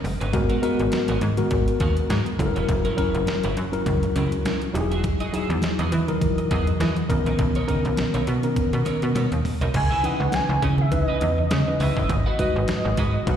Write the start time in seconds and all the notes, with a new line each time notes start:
Already playing: C#3 B3 A#4 D#5
0.04 F#1, muted clean electric guitar stroke, open hi-hat, high conga
0.21 G1 C#4 D#4 B4, closed hi-hat
0.33 G#1 B2 G#3 B3 F#4 A#4, kick, closed hi-hat, muted conga
0.49 B3 F#4 A#4, closed hi-hat
0.62 G#3 B3 F#4 A#4 B4, closed hi-hat
0.79 G#1, muted clean electric guitar stroke, closed hi-hat
0.92 muted clean electric guitar stroke, snare, closed hi-hat, high conga
1.08 G#1 B3 F#4 A#4, closed hi-hat
1.21 G#2, muted clean electric guitar stroke, closed hi-hat, low conga
1.37 G#3 B3 F#4 A#4, muted clean electric guitar stroke, closed hi-hat, low conga
1.51 G#1, kick, closed hi-hat, muted conga
1.68 muted clean electric guitar stroke, closed hi-hat
1.80 D#2 B3 F#4 A#4, kick, closed hi-hat, muted conga
1.97 muted clean electric guitar stroke, closed hi-hat
2.10 G#2 B3 F#4 A#4, snare, closed hi-hat, high conga
2.26 muted clean electric guitar stroke, closed hi-hat
2.39 F#1 E3 F#3 C#4 E4 A4, muted clean electric guitar stroke, kick, closed hi-hat, high conga
2.46 A#4
2.56 F1 C#4 E4 C#5, closed hi-hat
2.69 F#1, muted clean electric guitar stroke, kick, closed hi-hat, muted conga
2.85 C#4 E4 A#4, closed hi-hat
2.96 F#3 C#4 E4 A#4 C#5, kick, closed hi-hat
3.15 F#1, muted clean electric guitar stroke, closed hi-hat
3.27 muted clean electric guitar stroke, snare, closed hi-hat, high conga
3.44 F#1 C#4 E4 A#4, closed hi-hat
3.57 F#2, muted clean electric guitar stroke, closed hi-hat
3.72 F#3 C#4 E4 A#4, muted clean electric guitar stroke, closed hi-hat
3.86 C#2, kick, closed hi-hat, muted conga, low conga
4.03 muted clean electric guitar stroke, closed hi-hat
4.15 C#2 C#4 E4 A#4, closed hi-hat, muted conga
4.32 muted clean electric guitar stroke, closed hi-hat
4.45 C#4 E4 A#4, snare, closed hi-hat, high conga
4.62 muted clean electric guitar stroke, closed hi-hat
4.73 E1 F#3 G#3 D#4 E4 G4 D#5, muted clean electric guitar stroke, closed hi-hat, high conga
4.81 G#4
4.91 F#4 G#4 E5, closed hi-hat
5.04 muted clean electric guitar stroke, kick, closed hi-hat, muted conga
5.20 F#4 G#4 D#5, closed hi-hat
5.33 F#3 D#4 E4 F#4 G#4 E5, closed hi-hat
5.50 E2, muted clean electric guitar stroke, closed hi-hat
5.62 muted clean electric guitar stroke, snare, closed hi-hat, high conga
5.79 E2 F#4 G#4 D#5, closed hi-hat
5.92 E3, muted clean electric guitar stroke, closed hi-hat, low conga
6.07 F#3 D#4 E4 A#4, muted clean electric guitar stroke, closed hi-hat, low conga
6.21 F#2, kick, closed hi-hat, muted conga
6.38 muted clean electric guitar stroke, closed hi-hat
6.51 E2 F#4 G#4 D#5, kick, closed hi-hat
6.67 muted clean electric guitar stroke, closed hi-hat
6.80 E3 F#4 G#4 D#5, snare, closed hi-hat, high conga
6.96 muted clean electric guitar stroke, closed hi-hat
7.09 B1 C#3 D#3 B3 C#4 A#4, muted clean electric guitar stroke, kick, closed hi-hat, high conga
7.26 A#1 D#4 A#4 D#5, closed hi-hat
7.39 B1, muted clean electric guitar stroke, kick, closed hi-hat, muted conga
7.55 D#4 A#4 C#5, closed hi-hat
7.67 C#3 B3 C#4 D#4 A#4 D#5, kick, closed hi-hat
7.74 D#3
7.85 B1, muted clean electric guitar stroke, closed hi-hat
7.97 muted clean electric guitar stroke, snare, closed hi-hat, high conga
8.14 B1 D#4 A#4 C#5, closed hi-hat
8.27 B2, muted clean electric guitar stroke, closed hi-hat
8.43 D#3 B3 C#4 A#4, muted clean electric guitar stroke, closed hi-hat
8.56 kick, closed hi-hat, muted conga, low conga
8.73 B2, muted clean electric guitar stroke, closed hi-hat
8.85 D#4 A#4 C#5, closed hi-hat, muted conga
9.02 B2, muted clean electric guitar stroke, closed hi-hat
9.15 B2 D#4 A#4 C#5, closed hi-hat, high tom, high conga
9.32 D#2, muted clean electric guitar stroke, closed hi-hat
9.45 muted clean electric guitar stroke, mid tom, open hi-hat, high conga
9.61 B1 D#4 A#4 D#5, closed hi-hat, floor tom
9.74 C#2 C#3 E3 B3 D#4 G#5, muted clean electric guitar stroke, kick, closed hi-hat, crash, muted conga
9.91 E4 B4 E5
10.03 E3 C#4 D#4 E4 B4 D#5 F#5, closed hi-hat
10.20 C#2, muted clean electric guitar stroke
10.32 G#5, snare, closed hi-hat, high conga
10.49 C#2, muted clean electric guitar stroke
10.62 C#3 E4 B4 D#5, kick, closed hi-hat, low conga
10.78 E5, muted clean electric guitar stroke, low conga
10.91 C#2 E3 C#4 D#4 B4 E5, muted clean electric guitar stroke, kick, closed hi-hat, muted conga
11.04 D#5
11.09 E4 B4
11.21 E2, muted clean electric guitar stroke, closed hi-hat, muted conga
11.38 D#5, muted clean electric guitar stroke
11.50 C#3, muted clean electric guitar stroke, snare, closed hi-hat, high conga
11.67 E3 C#4 D#4 B4, muted clean electric guitar stroke
11.80 C#2 E4 B4 D#5 E5, open hi-hat, high conga
11.97 G1 E4 B4 D#5, kick
12.09 G#1 D#3 G#3 F#4 D#5, muted clean electric guitar stroke, kick, closed hi-hat, muted conga
12.26 F#4 B4 F#5
12.39 G#3 D#4 F#4 B4 D#5, kick, closed hi-hat
12.56 G#1, muted clean electric guitar stroke
12.68 snare, closed hi-hat, high conga
12.85 G#1, muted clean electric guitar stroke
12.97 G#2 F#4 B4 D#5, kick, closed hi-hat
13.15 muted clean electric guitar stroke
13.26 B1 G#3 D#4 F#4 B4 F#5, muted clean electric guitar stroke, kick, closed hi-hat, muted conga